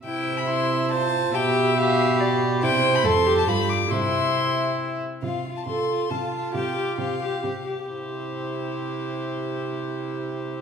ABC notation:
X:1
M:3/4
L:1/16
Q:1/4=137
K:C
V:1 name="Violin"
g3 b c'4 a4 | g4 f6 z2 | g3 b c'3 a b2 d'2 | c'8- c'2 z2 |
f3 a c'4 a4 | g4 f6 z2 | c12- | c12 |]
V:2 name="Viola"
e8 c4 | e8 d4 | c4 A4 G4 | e8- e2 z2 |
z4 A4 F4- | F8 G2 z2 | E12- | E12 |]
V:3 name="Violin"
E4 E4 F4 | G4 G8 | E4 A2 G2 F4 | E8- E2 z2 |
F2 F2 F2 F2 F2 F2 | G2 G2 G2 G2 G2 G2 | G12- | G12 |]
V:4 name="Cello" clef=bass
C,12 | B,,12 | C,4 F,,4 G,,4 | C,8- C,2 z2 |
C,4 C,4 C,4 | C,4 C,4 C,4 | C,12- | C,12 |]